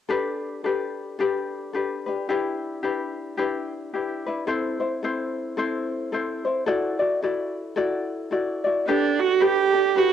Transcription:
0.09 D4 G4 A4 B4
0.64 D4 G4 A4 B4
1.19 D4 G4 A4 B4
1.73 D4 G4 A4 B4
2.06 D4 G4 B4
2.29 D4 E4 G4 B4
2.83 D4 E4 G4 B4
3.37 D4 E4 G4 B4
3.93 D4 E4 G4 B4
4.26 D4 E4 B4
4.47 C4 E4 A4 C5
4.80 C4 E4 C5
5.02 C4 E4 A4 C5
5.57 C4 E4 A4 C5
6.12 C4 E4 A4 C5
6.45 C4 E4 C5
6.66 E4 F#4 A4 D5
6.99 E4 F#4 D5
7.22 E4 F#4 A4 D5
7.76 E4 F#4 A4 D5
8.31 E4 F#4 A4 D5
8.64 E4 F#4 D5
8.88 D4 G4 A4 B4
9.19 F#4
9.40 D4 G4 A4 B4
9.73 D4 G4 A4
9.95 D4 F#4 G4 A4 B4

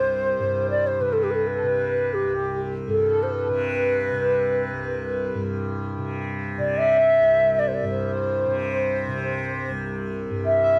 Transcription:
Already playing: C2 G2 C3 C5
0.39 G2
0.70 D5
0.87 C5
1.00 C3 B4 C5
1.12 A4
1.17 B4
1.23 G4
1.31 A4 B4
1.47 B4
1.53 A4
1.63 C3 B4
2.14 G4
2.26 C2
2.31 G4
2.88 G2 A4
3.04 A4
3.23 C5
3.31 B4
3.47 C3 B4
4.12 C3
4.73 C2
5.34 G2
5.98 C3
6.58 C3 D5
6.77 D5 E5
6.96 E5
7.20 C2
7.59 D5
7.68 C5
7.74 D5
7.83 G2
7.90 C5
8.08 C5
8.46 C3
9.08 C3
9.70 C2
10.30 G2
10.45 E5
10.62 E5

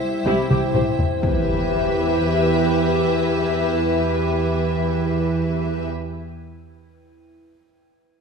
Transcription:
Already playing: G3 E4 C5 E5 G5
0.25 C2 C3 E4 G4, taiko high
0.49 C2 G4, taiko mid
0.74 C2 C3 G4 C5, taiko low-mid
0.99 taiko low
1.22 E2 E3 E4 G4 B4 E5 G5, impact

